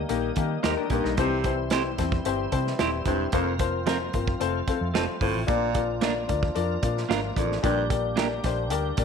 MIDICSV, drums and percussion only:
0, 0, Header, 1, 2, 480
1, 0, Start_track
1, 0, Key_signature, -2, "major"
1, 0, Tempo, 538117
1, 1050, Time_signature, 4, 2, 24, 8
1, 8068, End_track
2, 0, Start_track
2, 0, Title_t, "Drums"
2, 82, Note_on_c, 9, 42, 80
2, 172, Note_off_c, 9, 42, 0
2, 319, Note_on_c, 9, 42, 78
2, 327, Note_on_c, 9, 36, 74
2, 408, Note_off_c, 9, 42, 0
2, 416, Note_off_c, 9, 36, 0
2, 569, Note_on_c, 9, 42, 73
2, 570, Note_on_c, 9, 38, 94
2, 659, Note_off_c, 9, 38, 0
2, 659, Note_off_c, 9, 42, 0
2, 801, Note_on_c, 9, 42, 71
2, 804, Note_on_c, 9, 36, 81
2, 890, Note_off_c, 9, 42, 0
2, 893, Note_off_c, 9, 36, 0
2, 936, Note_on_c, 9, 38, 32
2, 1025, Note_off_c, 9, 38, 0
2, 1048, Note_on_c, 9, 42, 79
2, 1051, Note_on_c, 9, 36, 97
2, 1137, Note_off_c, 9, 42, 0
2, 1141, Note_off_c, 9, 36, 0
2, 1285, Note_on_c, 9, 42, 73
2, 1288, Note_on_c, 9, 36, 85
2, 1374, Note_off_c, 9, 42, 0
2, 1377, Note_off_c, 9, 36, 0
2, 1519, Note_on_c, 9, 42, 80
2, 1526, Note_on_c, 9, 38, 90
2, 1608, Note_off_c, 9, 42, 0
2, 1615, Note_off_c, 9, 38, 0
2, 1770, Note_on_c, 9, 42, 65
2, 1772, Note_on_c, 9, 36, 73
2, 1774, Note_on_c, 9, 38, 33
2, 1859, Note_off_c, 9, 42, 0
2, 1861, Note_off_c, 9, 36, 0
2, 1863, Note_off_c, 9, 38, 0
2, 1892, Note_on_c, 9, 36, 97
2, 1981, Note_off_c, 9, 36, 0
2, 2009, Note_on_c, 9, 42, 80
2, 2098, Note_off_c, 9, 42, 0
2, 2248, Note_on_c, 9, 42, 75
2, 2251, Note_on_c, 9, 36, 73
2, 2338, Note_off_c, 9, 42, 0
2, 2341, Note_off_c, 9, 36, 0
2, 2381, Note_on_c, 9, 38, 33
2, 2471, Note_off_c, 9, 38, 0
2, 2489, Note_on_c, 9, 42, 74
2, 2490, Note_on_c, 9, 38, 100
2, 2578, Note_off_c, 9, 42, 0
2, 2579, Note_off_c, 9, 38, 0
2, 2724, Note_on_c, 9, 42, 79
2, 2726, Note_on_c, 9, 36, 82
2, 2813, Note_off_c, 9, 42, 0
2, 2815, Note_off_c, 9, 36, 0
2, 2963, Note_on_c, 9, 42, 73
2, 2970, Note_on_c, 9, 36, 104
2, 3052, Note_off_c, 9, 42, 0
2, 3059, Note_off_c, 9, 36, 0
2, 3204, Note_on_c, 9, 42, 81
2, 3207, Note_on_c, 9, 36, 95
2, 3294, Note_off_c, 9, 42, 0
2, 3296, Note_off_c, 9, 36, 0
2, 3448, Note_on_c, 9, 42, 78
2, 3456, Note_on_c, 9, 38, 93
2, 3537, Note_off_c, 9, 42, 0
2, 3545, Note_off_c, 9, 38, 0
2, 3688, Note_on_c, 9, 42, 62
2, 3692, Note_on_c, 9, 36, 74
2, 3777, Note_off_c, 9, 42, 0
2, 3781, Note_off_c, 9, 36, 0
2, 3813, Note_on_c, 9, 36, 95
2, 3903, Note_off_c, 9, 36, 0
2, 3931, Note_on_c, 9, 42, 76
2, 4020, Note_off_c, 9, 42, 0
2, 4170, Note_on_c, 9, 42, 74
2, 4171, Note_on_c, 9, 36, 84
2, 4260, Note_off_c, 9, 36, 0
2, 4260, Note_off_c, 9, 42, 0
2, 4415, Note_on_c, 9, 42, 70
2, 4416, Note_on_c, 9, 38, 101
2, 4504, Note_off_c, 9, 42, 0
2, 4505, Note_off_c, 9, 38, 0
2, 4647, Note_on_c, 9, 36, 86
2, 4653, Note_on_c, 9, 46, 59
2, 4736, Note_off_c, 9, 36, 0
2, 4743, Note_off_c, 9, 46, 0
2, 4889, Note_on_c, 9, 42, 77
2, 4891, Note_on_c, 9, 36, 99
2, 4979, Note_off_c, 9, 42, 0
2, 4980, Note_off_c, 9, 36, 0
2, 5125, Note_on_c, 9, 42, 82
2, 5129, Note_on_c, 9, 36, 87
2, 5215, Note_off_c, 9, 42, 0
2, 5218, Note_off_c, 9, 36, 0
2, 5365, Note_on_c, 9, 42, 79
2, 5373, Note_on_c, 9, 38, 95
2, 5454, Note_off_c, 9, 42, 0
2, 5462, Note_off_c, 9, 38, 0
2, 5610, Note_on_c, 9, 42, 68
2, 5613, Note_on_c, 9, 36, 86
2, 5699, Note_off_c, 9, 42, 0
2, 5703, Note_off_c, 9, 36, 0
2, 5733, Note_on_c, 9, 36, 101
2, 5823, Note_off_c, 9, 36, 0
2, 5848, Note_on_c, 9, 42, 76
2, 5937, Note_off_c, 9, 42, 0
2, 6089, Note_on_c, 9, 42, 78
2, 6092, Note_on_c, 9, 36, 86
2, 6178, Note_off_c, 9, 42, 0
2, 6181, Note_off_c, 9, 36, 0
2, 6220, Note_on_c, 9, 38, 32
2, 6309, Note_off_c, 9, 38, 0
2, 6340, Note_on_c, 9, 42, 70
2, 6341, Note_on_c, 9, 38, 102
2, 6429, Note_off_c, 9, 42, 0
2, 6430, Note_off_c, 9, 38, 0
2, 6569, Note_on_c, 9, 36, 84
2, 6577, Note_on_c, 9, 42, 81
2, 6658, Note_off_c, 9, 36, 0
2, 6666, Note_off_c, 9, 42, 0
2, 6707, Note_on_c, 9, 38, 36
2, 6796, Note_off_c, 9, 38, 0
2, 6812, Note_on_c, 9, 36, 100
2, 6816, Note_on_c, 9, 42, 73
2, 6901, Note_off_c, 9, 36, 0
2, 6905, Note_off_c, 9, 42, 0
2, 7049, Note_on_c, 9, 36, 86
2, 7050, Note_on_c, 9, 42, 81
2, 7138, Note_off_c, 9, 36, 0
2, 7139, Note_off_c, 9, 42, 0
2, 7287, Note_on_c, 9, 42, 78
2, 7294, Note_on_c, 9, 38, 98
2, 7376, Note_off_c, 9, 42, 0
2, 7383, Note_off_c, 9, 38, 0
2, 7526, Note_on_c, 9, 42, 70
2, 7530, Note_on_c, 9, 36, 73
2, 7530, Note_on_c, 9, 38, 28
2, 7615, Note_off_c, 9, 42, 0
2, 7619, Note_off_c, 9, 36, 0
2, 7619, Note_off_c, 9, 38, 0
2, 7763, Note_on_c, 9, 42, 87
2, 7852, Note_off_c, 9, 42, 0
2, 8003, Note_on_c, 9, 42, 76
2, 8008, Note_on_c, 9, 36, 88
2, 8068, Note_off_c, 9, 36, 0
2, 8068, Note_off_c, 9, 42, 0
2, 8068, End_track
0, 0, End_of_file